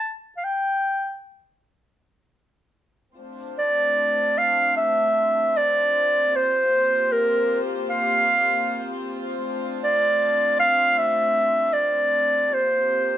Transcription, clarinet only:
0, 0, Header, 1, 2, 480
1, 0, Start_track
1, 0, Key_signature, -1, "minor"
1, 0, Tempo, 500000
1, 12650, End_track
2, 0, Start_track
2, 0, Title_t, "Clarinet"
2, 0, Program_c, 0, 71
2, 0, Note_on_c, 0, 81, 90
2, 157, Note_off_c, 0, 81, 0
2, 355, Note_on_c, 0, 77, 59
2, 423, Note_on_c, 0, 79, 90
2, 438, Note_off_c, 0, 77, 0
2, 1163, Note_off_c, 0, 79, 0
2, 3442, Note_on_c, 0, 74, 98
2, 4205, Note_on_c, 0, 77, 98
2, 4220, Note_off_c, 0, 74, 0
2, 4565, Note_off_c, 0, 77, 0
2, 4578, Note_on_c, 0, 76, 104
2, 5348, Note_on_c, 0, 74, 97
2, 5362, Note_off_c, 0, 76, 0
2, 6105, Note_on_c, 0, 72, 94
2, 6119, Note_off_c, 0, 74, 0
2, 6837, Note_on_c, 0, 70, 85
2, 6851, Note_off_c, 0, 72, 0
2, 7305, Note_off_c, 0, 70, 0
2, 7580, Note_on_c, 0, 77, 92
2, 8638, Note_off_c, 0, 77, 0
2, 9448, Note_on_c, 0, 74, 104
2, 10129, Note_off_c, 0, 74, 0
2, 10173, Note_on_c, 0, 77, 115
2, 10542, Note_on_c, 0, 76, 111
2, 10557, Note_off_c, 0, 77, 0
2, 11262, Note_on_c, 0, 74, 102
2, 11276, Note_off_c, 0, 76, 0
2, 12038, Note_on_c, 0, 72, 93
2, 12053, Note_off_c, 0, 74, 0
2, 12650, Note_off_c, 0, 72, 0
2, 12650, End_track
0, 0, End_of_file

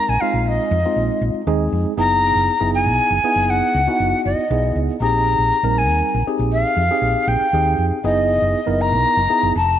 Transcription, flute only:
0, 0, Header, 1, 2, 480
1, 0, Start_track
1, 0, Tempo, 504202
1, 447, Time_signature, 6, 3, 24, 8
1, 9323, End_track
2, 0, Start_track
2, 0, Title_t, "Flute"
2, 0, Program_c, 0, 73
2, 0, Note_on_c, 0, 82, 95
2, 88, Note_on_c, 0, 80, 84
2, 102, Note_off_c, 0, 82, 0
2, 197, Note_on_c, 0, 77, 86
2, 211, Note_off_c, 0, 80, 0
2, 460, Note_on_c, 0, 75, 82
2, 474, Note_off_c, 0, 77, 0
2, 1175, Note_off_c, 0, 75, 0
2, 1895, Note_on_c, 0, 82, 117
2, 2575, Note_off_c, 0, 82, 0
2, 2614, Note_on_c, 0, 80, 101
2, 3333, Note_on_c, 0, 78, 98
2, 3347, Note_off_c, 0, 80, 0
2, 4043, Note_off_c, 0, 78, 0
2, 4049, Note_on_c, 0, 75, 78
2, 4552, Note_off_c, 0, 75, 0
2, 4770, Note_on_c, 0, 82, 97
2, 5504, Note_on_c, 0, 80, 80
2, 5519, Note_off_c, 0, 82, 0
2, 5961, Note_off_c, 0, 80, 0
2, 6214, Note_on_c, 0, 77, 88
2, 6931, Note_on_c, 0, 79, 84
2, 6946, Note_off_c, 0, 77, 0
2, 7470, Note_off_c, 0, 79, 0
2, 7658, Note_on_c, 0, 75, 95
2, 8390, Note_on_c, 0, 82, 98
2, 8404, Note_off_c, 0, 75, 0
2, 9099, Note_off_c, 0, 82, 0
2, 9105, Note_on_c, 0, 81, 102
2, 9323, Note_off_c, 0, 81, 0
2, 9323, End_track
0, 0, End_of_file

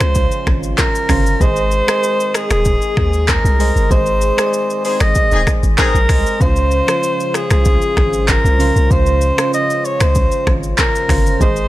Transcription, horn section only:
0, 0, Header, 1, 2, 480
1, 0, Start_track
1, 0, Tempo, 625000
1, 1081, Time_signature, 4, 2, 24, 8
1, 8970, End_track
2, 0, Start_track
2, 0, Title_t, "Horn section"
2, 0, Program_c, 0, 61
2, 3722, Note_on_c, 0, 68, 93
2, 3723, Note_on_c, 0, 60, 81
2, 3723, Note_on_c, 0, 63, 82
2, 3828, Note_off_c, 0, 60, 0
2, 3828, Note_off_c, 0, 63, 0
2, 3828, Note_off_c, 0, 68, 0
2, 4088, Note_on_c, 0, 60, 92
2, 4088, Note_on_c, 0, 63, 94
2, 4088, Note_on_c, 0, 68, 107
2, 4161, Note_off_c, 0, 60, 0
2, 4161, Note_off_c, 0, 63, 0
2, 4161, Note_off_c, 0, 68, 0
2, 4442, Note_on_c, 0, 60, 95
2, 4442, Note_on_c, 0, 63, 95
2, 4442, Note_on_c, 0, 68, 108
2, 4595, Note_off_c, 0, 60, 0
2, 4595, Note_off_c, 0, 63, 0
2, 4595, Note_off_c, 0, 68, 0
2, 8970, End_track
0, 0, End_of_file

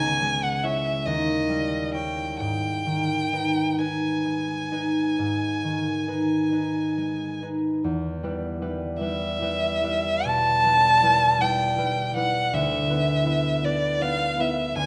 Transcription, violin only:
0, 0, Header, 1, 2, 480
1, 0, Start_track
1, 0, Key_signature, 5, "minor"
1, 0, Tempo, 846262
1, 846, Tempo, 924499
1, 1317, Time_signature, 12, 3, 24, 8
1, 2766, Tempo, 886263
1, 4205, Key_signature, 1, "minor"
1, 4206, Tempo, 798935
1, 6126, Tempo, 745342
1, 8585, End_track
2, 0, Start_track
2, 0, Title_t, "Violin"
2, 0, Program_c, 0, 40
2, 0, Note_on_c, 0, 80, 76
2, 245, Note_on_c, 0, 78, 58
2, 253, Note_off_c, 0, 80, 0
2, 361, Note_on_c, 0, 76, 62
2, 369, Note_off_c, 0, 78, 0
2, 601, Note_on_c, 0, 75, 60
2, 610, Note_off_c, 0, 76, 0
2, 1075, Note_off_c, 0, 75, 0
2, 1078, Note_on_c, 0, 79, 49
2, 1312, Note_off_c, 0, 79, 0
2, 1320, Note_on_c, 0, 79, 57
2, 2040, Note_on_c, 0, 80, 42
2, 2047, Note_off_c, 0, 79, 0
2, 3979, Note_off_c, 0, 80, 0
2, 4900, Note_on_c, 0, 76, 68
2, 5656, Note_on_c, 0, 81, 87
2, 5665, Note_off_c, 0, 76, 0
2, 6362, Note_on_c, 0, 79, 67
2, 6371, Note_off_c, 0, 81, 0
2, 6842, Note_off_c, 0, 79, 0
2, 6845, Note_on_c, 0, 78, 67
2, 7087, Note_on_c, 0, 76, 70
2, 7096, Note_off_c, 0, 78, 0
2, 7803, Note_on_c, 0, 74, 69
2, 7813, Note_off_c, 0, 76, 0
2, 8043, Note_on_c, 0, 77, 79
2, 8053, Note_off_c, 0, 74, 0
2, 8287, Note_on_c, 0, 76, 63
2, 8297, Note_off_c, 0, 77, 0
2, 8524, Note_off_c, 0, 76, 0
2, 8528, Note_on_c, 0, 80, 91
2, 8585, Note_off_c, 0, 80, 0
2, 8585, End_track
0, 0, End_of_file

